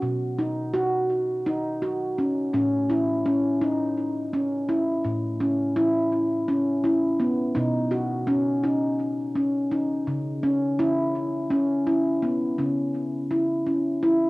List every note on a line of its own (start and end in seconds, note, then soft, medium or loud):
0.00 2.50 B2 medium
0.00 0.38 F#4 medium
0.39 0.74 D#4 medium
0.74 1.46 F#4 medium
1.46 1.82 D#4 medium
1.82 2.18 F#4 medium
2.18 2.53 C#4 medium
2.53 5.01 A2 medium
2.53 2.90 C#4 medium
2.90 3.26 E4 medium
3.26 3.62 C#4 medium
3.61 4.33 D#4 medium
4.33 4.69 C#4 medium
4.69 5.41 E4 medium
5.05 7.52 A2 medium
5.40 5.77 C#4 medium
5.76 6.48 E4 medium
6.48 6.84 C#4 medium
6.84 7.20 E4 medium
7.20 7.56 B3 medium
7.55 10.03 B2 medium
7.55 7.92 D#4 medium
7.91 8.28 F#4 medium
8.27 8.63 C#4 medium
8.64 9.36 D#4 medium
9.35 9.71 C#4 medium
9.71 10.43 D#4 medium
10.07 12.54 C#3 medium
10.43 10.79 C#4 medium
10.79 11.51 E4 medium
11.51 11.87 C#4 medium
11.87 12.23 E4 medium
12.22 12.58 B3 medium
12.58 14.30 C#3 medium
12.58 13.30 C#4 medium
13.31 13.66 E4 medium
13.66 14.02 C#4 medium
14.03 14.30 E4 medium